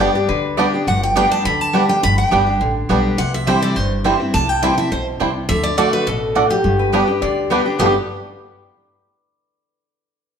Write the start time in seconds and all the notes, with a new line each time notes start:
Already playing: G2 D5
0.00 G3 B3 D4 G4 D5 G5
0.15 D4 G4
0.28 D2 D3 B4
0.57 G3 B3 D4 G4 D5 G5
0.74 D4 G4
0.87 G1 G2 F#5
1.03 G5
1.15 G3 B3 D4 G4 D5 G5
1.32 A5
1.45 D2 D3 B5
1.61 A5
1.73 G3 B3 D4 G4 D5 G5
1.89 D4 G4 G5
2.03 G1 G2 B5
2.18 G5
2.31 G1 G3 B3 D4 G4 D5 G5
2.47 D4 G4
2.60 A1 D3
2.89 B1 G3 B3 D4 G4 D5 G5
3.18 C2 C3 F#5
3.34 E5
3.47 E3 G3 C4 E4 C5 E5 G5
3.62 D5
3.76 G1 G2 C5
4.04 E3 G3 C4 E4 C5 G5
4.20 C4 E4
4.34 C2 C3 A5
4.49 G5
4.62 E3 G3 C4 E4 C5 G5
4.78 C4 E4 E5
4.91 B1 B2 C5
5.20 C2 C3 G3 C4 E4 C5 G5
5.49 D2 D3 E5
5.63 D5
5.77 D3 A3 D4 F#4 D5 F#5
5.93 B4
6.07 A1 B2 A4
6.35 A2 A3 D4 F#4 D5 F#5
6.50 G4
6.64 G1 G2
6.79 B4
6.92 G3 B3 D4 G4 B4 D5 G5
7.08 D4 G4
7.22 D2 D3 D5
7.50 G3 B3 D4 G4 B4 D5 G5
7.65 D4 G4
7.79 G1 G2 D3 G3 B3 D4 G4 B4 D5 G5
7.84 D4 G4